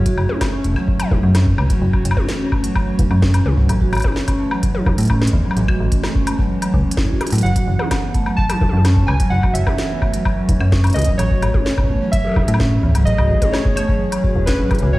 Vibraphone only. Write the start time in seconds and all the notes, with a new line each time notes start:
0.06 F#4
0.29 C#4
0.53 C#4
0.65 A3
0.76 F#3
1.00 F#3
1.11 F#3
1.35 C#4
1.70 F#3
1.82 F#3
1.93 F#4
2.17 C#4
2.40 C#4
2.52 A3
2.64 F#3
2.87 F#3
2.99 F#3
3.22 C#4
3.57 F#3
3.69 F#3
3.81 F#4
4.04 C#4
4.28 C#4
4.40 A3
4.51 F#3
4.75 F#3
4.86 F#3
5.10 C#4
5.45 F#3
5.57 F#3
5.68 F#4
5.92 C#4
6.15 C#4
6.27 A3
6.39 F#3
6.62 F#3
6.74 C#4
6.97 E4
7.09 F#4
7.32 F#3
7.44 F#3
7.56 F#4
7.79 C#4
8.03 B3
8.15 A3
8.26 F#3
8.50 F#3
8.61 F#3
8.85 C#4
9.20 F#3
9.32 F#3
9.43 F#4
9.67 C#4
9.90 B3
10.02 A3
10.14 F#3
10.37 F#3
10.49 F#3
10.72 C#4
11.07 F#3
11.19 F#3
11.31 F#4
11.54 C#4
11.78 B3
11.89 A3
12.01 F#3
12.25 F#3
12.36 F#3
12.60 C#4
12.95 F#3
13.07 F#3
13.18 F#4
13.42 C#4
13.65 B3
13.77 A3
13.89 F#3
14.12 F#3
14.24 F#4
14.47 C#4
14.59 F#3
14.82 F#4
14.94 F#3